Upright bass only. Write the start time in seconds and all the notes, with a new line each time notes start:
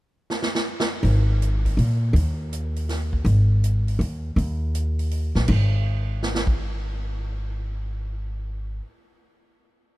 1.03 G#1
1.77 A#2
2.13 D#2
3.25 G#1
3.99 D#2
4.36 D#2
5.35 A#1
5.49 G#1